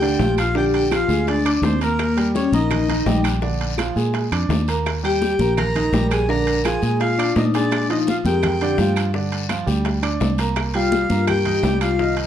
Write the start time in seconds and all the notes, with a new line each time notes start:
Already playing: D2 G4 G5
0.02 D3 D4 D5, high conga, high timbale
0.19 A#1 F3 F4 F5, high bongo, low bongo, high conga, low timbale, short guiro
0.38 F4 F5, high conga, high timbale, short guiro, claves
0.55 D3 D4 G4 D5 G5, high bongo, high conga, long guiro
0.73 G4 G5, high conga, high timbale
0.91 F3 F4 F5, high bongo, high conga, high timbale, short guiro, claves
1.08 D2 G#3 G#4 G#5, high bongo, high conga, short guiro
1.27 D4 D5, high bongo, high conga, high timbale, long guiro
1.45 D4 D5 D6, high bongo, high conga, high timbale, claves
1.62 D#2 C4 C5, high bongo, low bongo, high conga, low timbale, short guiro
1.81 A#3 A#4 A#5, high bongo, high conga, high timbale, short guiro
1.99 high bongo, high conga, high timbale, long guiro, claves
2.17 G3 G4 G5, high conga, high timbale
2.35 C#4 C#5, high bongo, high conga, short guiro
2.52 A#1 A#3 D#4 A#4 D#5 A#5, high conga, short guiro
2.70 high bongo, high conga, low conga, high timbale, long guiro, claves
2.89 D#3 D#4 D#5, high conga, low conga, high timbale
3.06 A#1 G3 G4 G5, high bongo, low bongo, high conga, low timbale, short guiro
3.24 high conga, high timbale, short guiro, claves
3.42 D3 D4 D5, high bongo, high conga, long guiro
3.61 high conga, high timbale
3.78 F3 F4 F5, high bongo, high conga, high timbale, short guiro, claves
3.96 A#2 G#3 G#4 G#5, high bongo, high conga, short guiro
4.14 high bongo, high conga, high timbale, long guiro
4.32 F2 D4 D5 D6, high bongo, high conga, high timbale, claves
4.49 D#2, high bongo, low bongo, high conga, low timbale, short guiro
4.68 A#3 A#4 A#5, high bongo, high timbale, short guiro
4.86 high bongo, high conga, high timbale, long guiro, claves
5.03 G3 G4 G5, high conga, high timbale
5.22 high bongo, high conga, short guiro
5.39 A#1 A#3 A#4 A#5, high conga, short guiro
5.57 A#4 A#5, high bongo, high conga, low conga, high timbale, long guiro, claves
5.75 D#3 D#4 D#5, high conga, low conga, high timbale
5.92 A#1 G3 G4 G5, high bongo, low bongo, high conga, low timbale, short guiro
6.11 G#4 G#5, high conga, high timbale, short guiro, claves
6.29 D3 D4 A#4 D5 A#5, high bongo, high conga, long guiro
6.47 high conga, high timbale
6.64 F3 F4 G#4 F5 G#5, high bongo, high conga, high timbale, short guiro, claves
6.82 A#2 G#3 G#4 G#5, high bongo, high conga, short guiro
7.00 F4 F5, high bongo, high conga, high timbale, long guiro
7.18 D4 D5 D6, high bongo, high conga, high timbale, claves
7.36 A#2 D#4 D#5, high bongo, low bongo, high conga, low timbale, short guiro
7.54 G#3 D4 G#4 D5 G#5, high bongo, high timbale, short guiro
7.71 high bongo, high conga, high timbale, long guiro, claves
7.89 F3 D#4 F4 D#5 F5, high conga, high timbale
8.07 F4 F5, high bongo, high conga, short guiro
8.25 F2 G#3 G4 A#4 G5, high conga, short guiro
8.42 high bongo, high conga, low conga, high timbale, long guiro, claves
8.61 D3 D4 D5, high conga, high timbale
8.78 G2 F3 F4 F5, high bongo, low bongo, high conga, short guiro
8.96 high timbale, short guiro, claves
9.14 D3 D4 D5, high bongo, high conga, long guiro
9.32 high conga, high timbale
9.49 F3 F4 F5, high bongo, high conga, high timbale, short guiro, claves
9.66 D2 G3 G4 G5, high bongo, high conga, short guiro
9.85 high bongo, high conga, high timbale, long guiro
10.02 D4 D5 D6, high bongo, high conga, high timbale, claves
10.20 C2, high bongo, low bongo, high conga, low timbale, short guiro
10.38 A#3 A#4 A#5, high bongo, high conga, high timbale, short guiro
10.56 high bongo, high conga, high timbale, long guiro, claves
10.74 G3 F4 G4 F5 G5, high conga, high timbale
10.92 high bongo, high conga, short guiro
11.10 G2 A#3 A#4 A#5, high conga, short guiro
11.27 G4 G5, high bongo, high conga, low conga, high timbale, long guiro, claves
11.45 D#3 D#4 D#5, high conga, low conga, high timbale
11.63 C2 G3 G4 G5, high bongo, low bongo, high conga, low timbale, short guiro
11.81 F4 F5, high conga, high timbale, short guiro, claves
11.99 D#3 D#4 D#5, high bongo, high conga, long guiro
12.17 high conga, high timbale